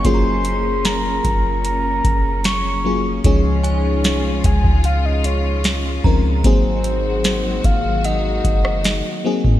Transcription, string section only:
0.00 3.20 F#3 medium
0.00 3.21 A#3 medium
0.00 6.41 C#4 medium
3.24 9.60 G#3 medium
3.24 6.41 F4 medium
6.45 9.60 D#3 medium
6.45 9.60 F#3 medium
6.45 9.60 F#4 medium

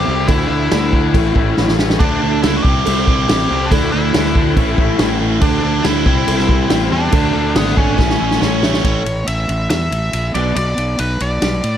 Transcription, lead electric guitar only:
0.00 0.27 G4 loud
0.28 0.47 E4 loud
0.48 1.74 E4 loud
1.99 2.39 D4 medium
2.43 2.57 E4 medium
2.58 2.63 F#4 medium
2.63 3.03 G4 loud
3.06 3.67 G4 loud
3.66 3.71 D4 medium
3.71 3.91 E4 loud
3.92 5.16 E4 loud
5.41 5.62 D4 loud
5.64 5.86 D4 medium
5.85 6.06 E4 medium
6.07 6.88 E4 medium
6.92 7.56 D4 medium
7.56 7.76 B3 medium
7.78 8.59 C#4 medium
8.42 8.82 C#5 medium
8.85 9.28 C#5 medium
9.28 9.68 E5 medium
9.70 10.34 E5 medium
10.34 10.55 D5 medium
10.56 11.00 D5 medium
10.99 11.21 B4 medium
11.22 11.78 D5 medium

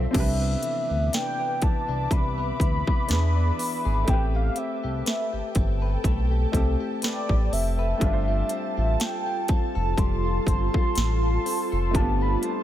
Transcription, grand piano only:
0.11 3.04 C4 medium
0.11 3.05 D4 medium
0.15 3.06 E4 medium
0.15 3.07 G4 medium
0.20 3.08 B4 medium
3.08 4.07 B3 medium
3.08 4.08 D4 medium
3.08 4.07 E4 medium
3.08 4.09 G#4 medium
3.13 4.09 B4 medium
4.04 6.48 A3 medium
4.04 6.49 C4 medium
4.09 6.50 E4 medium
4.09 6.51 G4 medium
4.13 6.52 B4 medium
6.52 7.96 A3 medium
6.52 8.01 C4 medium
6.52 8.02 E4 medium
6.52 8.02 G4 medium
6.57 8.03 A4 medium
7.97 11.89 A3 medium
7.97 11.90 D4 medium
8.02 11.91 F4 medium
8.02 11.92 G4 medium
8.07 8.11 B4 medium
8.13 11.97 C5 medium
11.91 12.63 A3 medium
11.91 12.63 D4 medium
11.96 12.63 F4 medium
11.96 12.63 G4 medium
12.00 12.63 B3 medium

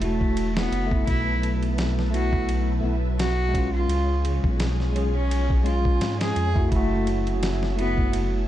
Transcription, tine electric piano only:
0.00 0.50 A3 medium
0.00 0.51 E4 medium
0.04 0.53 F#4 medium
0.54 0.85 A3 medium
0.54 0.87 E4 medium
0.59 0.88 F#4 medium
0.86 2.07 A3 medium
0.91 2.09 B3 medium
0.96 2.11 E4 medium
2.10 2.78 A3 medium
2.10 2.80 B3 medium
2.15 2.81 E4 medium
2.81 2.93 A3 medium
2.81 2.94 B3 medium
2.85 2.95 E4 loud
3.49 4.89 G#3 medium
3.54 4.91 C#4 medium
3.58 4.93 F4 loud
4.93 5.11 G#3 medium
4.93 5.13 C#4 medium
4.98 5.14 G#4 loud
5.64 6.15 G#3 medium
5.64 6.16 C#4 medium
5.68 6.17 F4 medium
6.18 6.50 G#3 medium
6.18 6.51 C#4 medium
6.23 6.52 F4 medium
6.54 6.66 A3 medium
6.54 6.70 E4 medium
6.58 6.75 F#4 loud
6.67 7.69 A3 medium
6.72 7.71 E4 medium
6.76 7.74 F#4 loud
7.76 8.43 A3 medium
7.76 8.44 E4 medium
7.80 8.46 F#4 medium

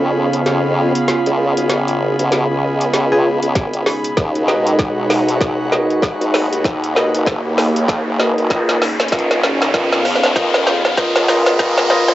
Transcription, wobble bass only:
0.00 0.44 F2 loud
0.46 0.92 F2 medium
1.26 1.54 C#2 medium
1.57 2.16 G#1 loud
2.19 2.47 B1 medium
2.50 3.40 C#2 medium
3.43 3.53 C#2 medium
3.55 3.84 G#1 medium
4.17 4.77 D#2 loud
4.79 5.39 B1 medium
5.41 5.87 C#2 loud
6.21 6.49 G#1 medium
6.52 7.11 D#2 medium
7.14 7.42 F#1 loud
7.45 8.04 D#2 medium
8.06 8.48 F#1 medium
8.50 8.79 C#2 medium
9.12 9.72 G#1 loud
9.74 10.34 F2 loud
10.36 10.82 F2 loud
11.16 11.44 C#2 medium
11.47 12.06 G#1 loud
12.09 12.14 C#2 loud

